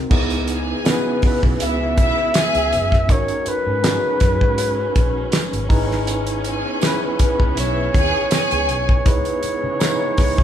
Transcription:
Already playing: C4 D#4 F#4 A#4
0.09 C#2 C#3 E3 G#3 B3 D#4 E4 G#4, kick, crash
0.30 closed hi-hat
0.48 G#4 G#5, closed hi-hat
0.84 B3 C#4 E4 F#4 B4, snare, closed hi-hat, tambourine
0.93 G#4
1.22 B4, muted fingered electric bass stroke, kick, open hi-hat
1.43 B1, kick
1.60 C#2 E4 E5, closed hi-hat
1.97 B1 E4 E5, kick, closed hi-hat
2.34 G#4 G#5, snare, closed hi-hat, tambourine
2.55 C#2, closed hi-hat
2.72 F#1, closed hi-hat
2.92 kick, snare
3.08 G#1 F#3 C#4 D#4 F#4 A#4 C#5, kick, closed hi-hat
3.28 closed hi-hat
3.46 B4, muted fingered electric bass stroke, closed hi-hat
3.67 G#2
3.83 C#4 D#4 F#4 G#4, snare, closed hi-hat, tambourine
4.20 F#2, kick, snare, closed hi-hat
4.41 G#2, kick
4.58 closed hi-hat
4.96 A#1, kick, closed hi-hat
5.32 snare, closed hi-hat, tambourine
5.53 G#1, closed hi-hat
5.69 G#1 E3 B3 D#4 E4 G#4 B4, kick, open hi-hat
5.91 snare
6.07 closed hi-hat
6.27 closed hi-hat
6.44 G#4 G#5, closed hi-hat
6.81 C#4 E4 G#4 B4, snare, closed hi-hat, tambourine
7.19 B4, muted fingered electric bass stroke, kick, closed hi-hat
7.40 C#2, kick
7.56 B1 E4 C#5 E5, closed hi-hat
7.94 D#2 G#4 G#5, kick, closed hi-hat
8.31 G#4 G#5, snare, closed hi-hat, tambourine
8.51 C#2, closed hi-hat
8.69 B1, closed hi-hat
8.89 kick
9.05 C#2 C#3 E3 G#3 B3 D#4 E4 G#4 B4, kick, closed hi-hat
9.11 C#5
9.25 closed hi-hat
9.43 muted fingered electric bass stroke, closed hi-hat
9.64 C#3
9.79 D#4 E4 G#4 B4, snare, closed hi-hat, tambourine
10.18 C#2, kick, snare, open hi-hat
10.38 C#3, kick

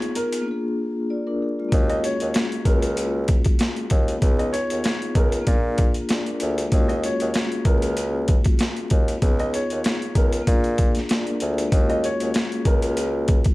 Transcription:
Already playing: B3 D#4 F4 G#4 C#5
0.02 closed hi-hat
0.15 A#4, closed hi-hat
0.32 closed hi-hat
0.41 A#3 D4
0.48 F4 G#4
1.10 F4 D5
1.27 D4 A#4
1.42 G#4
1.59 G#3 F4
1.69 D#2 A#3 C#4, kick, closed hi-hat
1.73 F4
1.78 G#4
1.89 D#5, closed hi-hat
2.04 C#5, closed hi-hat
2.20 D#2, closed hi-hat
2.34 snare, closed hi-hat
2.52 closed hi-hat
2.65 C#2 A#4, kick, closed hi-hat
2.82 closed hi-hat
2.97 closed hi-hat
3.28 kick, closed hi-hat
3.44 kick, closed hi-hat
3.59 snare, closed hi-hat
3.76 closed hi-hat
3.90 D#2, kick, closed hi-hat
4.08 closed hi-hat
4.18 B3 D#4
4.22 C#2 F4, kick, closed hi-hat
4.27 G#4
4.39 D#5, closed hi-hat
4.53 C#5, closed hi-hat
4.70 D#2, closed hi-hat
4.84 snare, closed hi-hat
5.02 closed hi-hat
5.15 C#2 A#4, kick, closed hi-hat
5.32 closed hi-hat
5.41 A#3 D4
5.47 A#2 F4, kick, closed hi-hat
5.51 G#4
5.78 kick, closed hi-hat
5.94 closed hi-hat
6.09 F4 D5, snare, closed hi-hat
6.26 D4 A#4, closed hi-hat
6.40 D2 G#4, closed hi-hat
6.58 G#3 F4, closed hi-hat
6.68 D#2 A#3 C#4, kick, closed hi-hat
6.73 F4 F#4
6.78 G#4
6.89 D#5, closed hi-hat
7.03 C#5, closed hi-hat
7.20 D#2, closed hi-hat
7.34 snare, closed hi-hat
7.52 closed hi-hat
7.65 C#2 A#4, kick, closed hi-hat
7.82 closed hi-hat
7.97 closed hi-hat
8.28 kick, closed hi-hat
8.44 kick, closed hi-hat
8.59 snare, closed hi-hat
8.76 closed hi-hat
8.90 D#2, kick, closed hi-hat
9.08 closed hi-hat
9.18 B3 D#4
9.22 C#2 F4, kick, closed hi-hat
9.28 G#4
9.39 D#5, closed hi-hat
9.54 C#5, closed hi-hat
9.70 D#2, closed hi-hat
9.84 snare, closed hi-hat
10.02 closed hi-hat
10.15 C#2 A#4, kick, closed hi-hat
10.32 closed hi-hat
10.42 A#3 D4
10.47 A#2 F4, kick, closed hi-hat
10.51 G#4
10.64 closed hi-hat
10.78 kick, closed hi-hat
10.95 snare, closed hi-hat
11.09 F4 D5, snare, closed hi-hat
11.27 D4 A#4, closed hi-hat
11.40 D2 G#4, closed hi-hat
11.58 G#3 F4, closed hi-hat
11.69 A#3 C#4, kick, closed hi-hat
11.73 D#2 F4 F#4
11.78 G#4
11.90 D#5, closed hi-hat
12.04 C#5, closed hi-hat
12.20 D#2, closed hi-hat
12.34 snare, closed hi-hat
12.52 closed hi-hat
12.65 C#2 A#4, kick, closed hi-hat
12.82 closed hi-hat
12.97 closed hi-hat
13.28 kick, closed hi-hat
13.44 kick, closed hi-hat

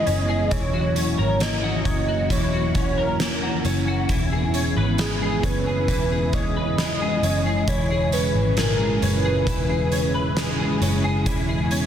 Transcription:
Already playing: C#3 E3 G#3 B3 E4 G#4 B4 D#5
0.06 F#1 C#4, closed hi-hat
0.29 G#4
0.51 E1 C#3 E3 F#3 A#3 C#5, kick, closed hi-hat
0.73 F#4
0.96 C#4, closed hi-hat
1.18 G#1 A#4
1.40 A#3 D#5, snare, closed hi-hat
1.63 F#4
1.85 F#1 C#4, kick, closed hi-hat
2.08 F#4
2.30 E1 E3 C#5, kick, closed hi-hat
2.53 F#4
2.75 C#4, kick, closed hi-hat
2.98 A#4
3.20 A#3, snare, closed hi-hat
3.42 F#4
3.65 F#1 C#4, closed hi-hat
3.87 F#4
4.09 E1 E3 G#3 B3, kick, closed hi-hat
4.32 G#4
4.54 C#4, closed hi-hat
4.77 G#1 B4
4.98 G#3 G#4, snare, closed hi-hat
5.22 G#4
5.43 F#1 C#4 B4, kick, closed hi-hat
5.67 G#4
5.88 E1 E3, kick, closed hi-hat
6.11 G#4
6.33 C#4 D#5, kick, closed hi-hat
6.56 B4
6.78 G#3, snare, closed hi-hat
7.01 G#4
7.22 F#1 C#4, closed hi-hat
7.46 G#4
7.68 E1 A#2 E3 C#5, kick, closed hi-hat
7.91 G#4
8.12 C#4 B4, closed hi-hat
8.35 G#1
8.57 G#3 A#4, snare, closed hi-hat
8.80 G#4
9.02 F#1 C#4 B4, closed hi-hat
9.25 G#4
9.47 E1 E3, kick, closed hi-hat
9.70 G#4
9.92 C#4, closed hi-hat
10.14 B4
10.37 G#3, snare, closed hi-hat
10.59 G#4
10.81 F#1 C#4, closed hi-hat
11.04 G#4
11.26 E1 E3 B3 E4, kick, closed hi-hat
11.49 G#4
11.71 C#4, closed hi-hat

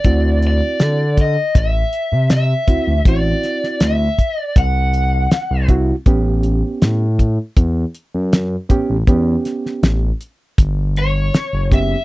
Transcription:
Already playing: D5
0.04 D2 C4 E4 F#4, kick, closed hi-hat
0.42 closed hi-hat
0.47 D5
0.80 D3, snare, closed hi-hat
1.17 D#5, kick, closed hi-hat
1.55 A1 E5, kick, closed hi-hat
1.93 closed hi-hat
2.12 C3
2.30 E5, snare, closed hi-hat
2.67 D2 C4 E4 F#4, kick, closed hi-hat
2.87 D2
3.05 A1 C4 E4 F#4 D5, kick, closed hi-hat
3.43 snare, closed hi-hat
3.64 snare
3.80 D2 E5, snare, closed hi-hat
4.18 kick, closed hi-hat
4.40 D5
4.56 C2 F#5, kick, closed hi-hat
4.94 closed hi-hat
5.31 snare, closed hi-hat
5.51 C2
5.68 C4 E4 F#4, kick, closed hi-hat
6.06 A1 B3 C#4 G4, kick, closed hi-hat
6.43 closed hi-hat
6.82 A2, snare, closed hi-hat
7.19 kick, closed hi-hat
7.57 E2, kick, closed hi-hat
7.95 closed hi-hat
8.14 F#2
8.33 snare, closed hi-hat
8.69 A1 B3 C#4 G4, kick, closed hi-hat
8.90 A1
9.07 E2 B3 C#4 G4, kick, closed hi-hat
9.45 snare, closed hi-hat
9.66 snare
9.83 A1, snare, closed hi-hat
10.21 closed hi-hat
10.58 G1, kick, closed hi-hat
10.96 C#5, closed hi-hat
11.34 snare, closed hi-hat
11.53 F#1
11.71 B3 C#4 G4 E5, kick, closed hi-hat

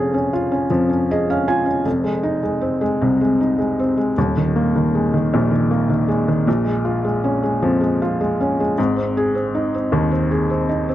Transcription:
Already playing: F1 F2 F3 C#4 F4 G#4
0.14 C#4
0.33 F4
0.52 C#4
0.70 F2 F3
0.90 C#4
1.11 G#4 D#5
1.30 C#4 F5
1.48 F4 G#5
1.66 C#4
1.85 F1 F2
2.04 G#3
2.23 D#4
2.43 G#3
2.61 C4
2.81 G#3
3.01 C2 C3
3.21 G#3
3.40 D#4
3.59 G#3
3.79 C4
3.97 G#3
4.18 D#1 D#2
4.37 D#3
4.56 A#3
4.75 D#3
4.95 G#3
5.14 D#3
5.33 A#1 A#2
5.51 D#3
5.71 A#3
5.89 D#3
6.08 G#3
6.28 D#3
6.47 A#1 A#2
6.65 G#3
6.85 F4
7.04 G#3
7.24 C#4
7.43 G#3
7.62 F2 F3
7.81 G#3
8.02 F4
8.21 G#3
8.41 C#4
8.60 G#3
8.78 G#1 G#2
8.96 C4
9.17 G#4
9.35 C4
9.55 D#4
9.74 C4
9.92 D#2 D#3
10.11 C4
10.31 G#4
10.50 C4
10.69 D#4
10.89 C4

